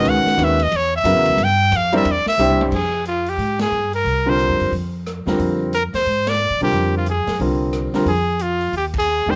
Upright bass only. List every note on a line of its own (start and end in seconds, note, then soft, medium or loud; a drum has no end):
0.04 0.24 C#2 medium
0.25 muted upright bass stroke soft
0.38 0.71 D#2 loud
0.71 1.03 E2 medium
1.04 1.15 F#2 medium
1.15 1.27 E2 medium
1.27 1.37 C#2 medium
1.37 1.70 G2 medium
1.71 2.04 F2 loud
2.05 2.24 E2 medium
2.25 muted upright bass stroke soft
2.37 2.70 C2 medium
2.71 3.35 F2 medium
3.38 3.69 G#2 medium
3.71 4.03 G2 medium
4.04 4.46 C2 medium
4.49 4.60 F2 soft
4.60 4.71 F#2 medium
4.71 5.22 F2 medium
5.26 5.38 E2 medium
5.39 5.89 F2 medium
5.93 6.05 E2 medium
6.06 6.47 G#2 medium
6.50 6.60 D3 medium
6.61 6.72 C3 medium
6.72 7.23 F2 medium
7.26 7.38 F#2 medium
7.39 7.90 C2 medium
7.93 muted upright bass stroke soft
8.05 8.69 F2 medium
8.72 9.23 D#2 medium
9.26 9.36 E2 medium